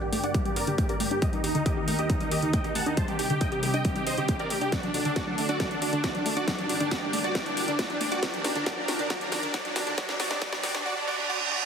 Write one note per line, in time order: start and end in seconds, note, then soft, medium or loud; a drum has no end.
0.00 1.20 G2 medium
0.00 1.19 D3 medium
0.00 2.94 A#3 medium
0.00 4.69 G4 medium
0.00 0.09 G4 loud
0.00 0.10 G4 medium
0.00 1.20 D5 medium
0.00 riser medium
0.13 0.20 A3 medium
0.13 0.21 G4 medium
0.13 open hi-hat loud
0.23 0.31 D4 medium
0.23 0.32 D5 medium
0.23 0.32 F#5 loud
0.23 closed hi-hat medium
0.34 0.44 G3 medium
0.34 0.43 G4 medium
0.34 kick loud
0.34 closed hi-hat medium
0.45 0.50 G3 medium
0.45 0.54 G4 medium
0.45 closed hi-hat soft
0.56 0.61 G4 medium
0.56 0.65 A#4 medium
0.56 0.65 D5 medium
0.56 open hi-hat loud
0.67 0.78 D3 medium
0.67 0.76 G4 medium
0.67 closed hi-hat medium
0.78 0.86 A3 medium
0.78 0.87 G4 medium
0.78 kick loud
0.78 closed hi-hat medium
0.89 0.96 G4 medium
0.89 0.98 A#4 medium
0.89 0.98 D5 loud
0.89 closed hi-hat soft
1.00 1.07 A3 medium
1.00 1.08 G4 medium
1.00 open hi-hat loud
1.11 1.18 D4 medium
1.11 1.19 G4 medium
1.11 closed hi-hat medium
1.22 2.96 D#2 medium
1.22 2.96 D#3 medium
1.22 1.32 G3 loud
1.22 1.30 G4 medium
1.22 2.96 A#4 medium
1.22 1.30 D#5 loud
1.22 kick loud
1.22 closed hi-hat medium
1.33 1.37 G3 medium
1.33 1.41 D#4 medium
1.33 closed hi-hat soft
1.44 1.52 D#4 medium
1.44 1.48 G4 medium
1.44 open hi-hat loud
1.55 1.65 D3 medium
1.55 1.63 D#4 medium
1.55 closed hi-hat soft
1.66 1.73 A3 medium
1.66 1.74 G4 medium
1.66 1.74 D#5 medium
1.66 kick loud
1.66 closed hi-hat medium
1.77 1.85 D#4 medium
1.77 1.84 G4 loud
1.88 1.95 A3 medium
1.88 1.96 D#4 medium
1.88 open hi-hat loud
1.99 2.06 D4 medium
1.99 2.07 G4 medium
1.99 2.07 D#5 loud
1.99 closed hi-hat medium
2.10 2.19 G3 medium
2.10 2.18 D#4 medium
2.10 kick loud
2.10 closed hi-hat medium
2.21 2.25 G3 medium
2.21 2.29 D#4 medium
2.21 closed hi-hat soft
2.31 2.36 G4 medium
2.31 2.40 G4 medium
2.31 2.40 D#5 medium
2.31 open hi-hat loud
2.42 2.53 D3 medium
2.42 2.51 D#4 medium
2.42 closed hi-hat soft
2.53 2.61 A3 medium
2.53 2.62 D#5 medium
2.53 2.62 G5 medium
2.53 kick loud
2.53 closed hi-hat medium
2.64 2.73 D#4 medium
2.64 2.72 G4 medium
2.64 closed hi-hat soft
2.75 2.83 A3 medium
2.75 2.84 F#5 medium
2.75 2.84 A5 medium
2.75 open hi-hat loud
2.86 2.94 D4 medium
2.86 2.95 D#4 medium
2.86 closed hi-hat soft
2.97 4.71 C2 medium
2.97 4.71 C3 medium
2.97 3.07 G3 loud
2.97 4.71 G3 medium
2.97 4.71 D#4 medium
2.97 3.06 C5 medium
2.97 3.06 A5 loud
2.97 kick loud
2.97 closed hi-hat medium
3.08 3.13 G3 medium
3.08 3.17 G4 medium
3.08 closed hi-hat soft
3.19 3.23 G4 medium
3.19 3.27 G4 medium
3.19 open hi-hat loud
3.30 3.40 D3 medium
3.30 3.38 G4 medium
3.30 closed hi-hat soft
3.41 3.48 A3 medium
3.41 3.49 D#5 medium
3.41 3.49 G5 medium
3.41 kick loud
3.41 closed hi-hat medium
3.52 3.59 G4 loud
3.52 3.60 G4 medium
3.52 closed hi-hat soft
3.63 3.70 A3 medium
3.63 3.71 G4 medium
3.63 open hi-hat loud
3.74 3.81 D4 medium
3.74 3.82 D#5 medium
3.74 3.82 G5 medium
3.74 closed hi-hat medium
3.85 3.95 G3 loud
3.85 3.93 G4 medium
3.85 kick loud
3.85 closed hi-hat medium
3.96 4.00 G3 medium
3.96 4.04 G4 medium
3.96 closed hi-hat soft
4.07 4.11 G4 medium
4.07 4.15 C5 medium
4.07 4.15 D#5 medium
4.07 open hi-hat loud
4.18 4.28 D3 medium
4.18 4.26 G4 medium
4.18 closed hi-hat soft
4.28 4.36 A3 medium
4.28 4.37 G4 medium
4.28 kick loud
4.28 closed hi-hat medium
4.39 4.47 G4 loud
4.39 4.48 A#4 medium
4.39 4.48 D5 loud
4.39 closed hi-hat soft
4.50 4.58 A3 medium
4.50 4.59 G4 medium
4.50 open hi-hat loud
4.61 4.69 D4 medium
4.61 4.70 G4 medium
4.61 closed hi-hat medium
4.72 6.46 D2 medium
4.72 8.19 D3 medium
4.72 4.82 F#3 medium
4.72 6.46 A3 medium
4.72 6.46 F#4 medium
4.72 4.81 F#4 medium
4.72 6.46 A4 medium
4.72 4.81 D5 loud
4.72 kick loud
4.72 snare medium
4.72 closed hi-hat medium
4.83 4.88 F#3 medium
4.83 4.92 D4 medium
4.83 closed hi-hat soft
4.94 5.03 D4 medium
4.94 4.99 F#4 medium
4.94 open hi-hat loud
5.05 5.16 D3 medium
5.05 5.13 D4 medium
5.05 closed hi-hat soft
5.16 5.23 A3 medium
5.16 5.24 F#4 medium
5.16 5.24 D5 medium
5.16 kick loud
5.16 snare soft
5.16 closed hi-hat medium
5.27 5.32 F#3 medium
5.27 5.35 D4 medium
5.38 5.45 A3 medium
5.38 5.46 D4 medium
5.38 open hi-hat loud
5.49 5.56 D4 medium
5.49 5.57 F#4 medium
5.49 5.57 D5 medium
5.49 closed hi-hat soft
5.60 5.70 F#3 medium
5.60 5.68 F#4 medium
5.60 5.68 D5 medium
5.60 kick loud
5.60 snare medium
5.60 closed hi-hat medium
5.71 5.75 F#3 medium
5.71 5.79 D4 medium
5.71 closed hi-hat soft
5.82 5.90 D4 medium
5.82 5.86 F#4 medium
5.82 open hi-hat loud
5.93 6.03 D3 medium
5.93 6.01 D4 medium
5.93 closed hi-hat medium
6.04 6.11 A3 medium
6.04 6.12 F#4 medium
6.04 6.12 D5 medium
6.04 kick loud
6.04 snare medium
6.04 closed hi-hat medium
6.15 6.19 F#3 medium
6.15 6.23 D4 medium
6.15 closed hi-hat soft
6.26 6.33 A3 medium
6.26 6.34 D4 medium
6.26 open hi-hat loud
6.37 6.44 D4 medium
6.37 6.45 F#4 medium
6.37 6.45 D5 medium
6.37 closed hi-hat medium
6.48 8.21 G2 medium
6.48 6.57 F#3 loud
6.48 9.94 A#3 medium
6.48 6.56 F#4 medium
6.48 10.82 G4 medium
6.48 6.56 D5 loud
6.48 8.21 D5 medium
6.48 kick loud
6.48 snare medium
6.48 closed hi-hat medium
6.58 6.63 F#3 medium
6.58 6.67 D4 medium
6.58 closed hi-hat soft
6.69 6.78 D4 medium
6.69 6.74 F#4 medium
6.69 open hi-hat loud
6.80 6.91 D3 medium
6.80 6.89 D4 medium
6.80 closed hi-hat medium
6.91 6.99 A3 medium
6.91 7.00 F#4 medium
6.91 7.00 D5 medium
6.91 kick loud
6.91 snare medium
6.91 closed hi-hat medium
7.02 7.07 F#3 medium
7.02 7.11 D4 medium
7.13 7.21 A3 medium
7.13 7.21 D4 medium
7.13 open hi-hat loud
7.24 7.31 D4 medium
7.24 7.32 F#4 medium
7.24 7.32 D5 medium
7.24 closed hi-hat soft
7.35 7.45 F#3 loud
7.35 7.43 F#4 medium
7.35 7.43 D5 medium
7.35 kick loud
7.35 snare medium
7.35 closed hi-hat medium
7.46 7.50 F#3 medium
7.46 7.54 D4 medium
7.46 closed hi-hat soft
7.57 7.65 D4 medium
7.57 7.61 F#4 medium
7.57 open hi-hat loud
7.68 7.78 D3 medium
7.68 7.76 D4 medium
7.68 closed hi-hat medium
7.79 7.86 A3 medium
7.79 7.87 F#4 medium
7.79 7.87 D5 medium
7.79 kick loud
7.79 snare medium
7.79 closed hi-hat medium
7.90 7.94 F#3 medium
7.90 7.98 D4 medium
7.90 closed hi-hat soft
8.01 8.08 A3 medium
8.01 8.09 D4 medium
8.01 open hi-hat loud
8.12 8.19 D4 medium
8.12 8.20 F#4 medium
8.12 8.20 D5 medium
8.12 closed hi-hat medium
8.23 9.96 D#2 medium
8.23 9.96 D#3 medium
8.23 8.32 F#3 loud
8.23 8.31 F#4 medium
8.23 9.96 A#4 medium
8.23 8.31 D5 loud
8.23 kick loud
8.23 snare medium
8.23 closed hi-hat medium
8.34 8.38 F#3 medium
8.34 8.42 D4 medium
8.34 closed hi-hat soft
8.44 8.53 D4 medium
8.44 8.49 F#4 medium
8.44 snare medium
8.44 open hi-hat loud
8.55 8.65 D3 medium
8.55 8.64 D4 medium
8.55 closed hi-hat medium
8.66 8.76 F#3 loud
8.66 8.75 F#4 medium
8.66 8.75 D5 loud
8.66 kick loud
8.66 snare medium
8.66 closed hi-hat medium
8.77 8.82 F#3 medium
8.77 8.86 D4 medium
8.88 8.97 D4 medium
8.88 8.93 F#4 medium
8.88 snare medium
8.88 open hi-hat loud
8.99 9.09 D3 medium
8.99 9.08 D4 medium
8.99 closed hi-hat medium
9.10 9.20 F#3 medium
9.10 9.19 F#4 medium
9.10 9.19 D5 loud
9.10 kick loud
9.10 snare medium
9.10 closed hi-hat medium
9.21 9.26 F#3 medium
9.21 9.30 D4 medium
9.21 closed hi-hat soft
9.32 9.40 D4 medium
9.32 9.37 F#4 medium
9.32 snare medium
9.32 open hi-hat loud
9.43 9.52 D3 medium
9.43 9.51 D4 medium
9.43 closed hi-hat medium
9.54 9.64 F#3 loud
9.54 9.62 F#4 medium
9.54 9.62 D5 loud
9.54 kick loud
9.54 snare medium
9.54 closed hi-hat medium
9.65 9.69 F#3 medium
9.65 9.73 D4 medium
9.65 closed hi-hat soft
9.76 9.84 D4 medium
9.76 9.80 F#4 medium
9.76 snare medium
9.76 open hi-hat loud
9.87 9.96 D3 medium
9.87 9.95 D4 medium
9.87 closed hi-hat medium
9.98 10.85 C2 medium
9.98 10.85 C3 medium
9.98 10.08 F#3 loud
9.98 10.85 G3 medium
9.98 10.85 D#4 medium
9.98 10.06 F#4 medium
9.98 10.06 D5 loud
9.98 kick loud
9.98 snare loud
9.98 closed hi-hat medium
10.09 10.13 F#3 medium
10.09 10.17 D4 medium
10.09 snare medium
10.09 closed hi-hat soft
10.20 10.30 F#3 loud
10.20 10.28 F#4 medium
10.20 10.28 D5 loud
10.20 snare medium
10.20 open hi-hat loud
10.31 10.35 F#3 medium
10.31 10.39 D4 medium
10.31 snare medium
10.31 closed hi-hat medium
10.42 10.51 F#3 loud
10.42 10.50 F#4 medium
10.42 10.50 D5 loud
10.42 kick loud
10.42 snare medium
10.42 closed hi-hat medium
10.53 10.57 F#3 medium
10.53 10.61 D4 medium
10.53 snare medium
10.53 closed hi-hat soft
10.63 10.73 F#3 loud
10.63 10.72 F#4 medium
10.63 10.72 D5 loud
10.63 snare loud
10.63 open hi-hat loud
10.74 10.79 F#3 medium
10.74 10.83 D4 medium
10.74 snare medium
10.74 closed hi-hat medium
10.85 10.94 F#4 medium
10.85 10.94 D5 loud
10.85 reverse cymbal medium
10.96 11.05 D4 medium
11.07 11.16 F#4 medium
11.07 11.16 D5 loud
11.18 11.27 D4 medium
11.29 11.38 F#4 medium
11.29 11.38 D5 loud
11.40 11.49 D4 medium
11.51 11.59 F#4 medium
11.51 11.59 D5 loud
11.62 11.65 D4 medium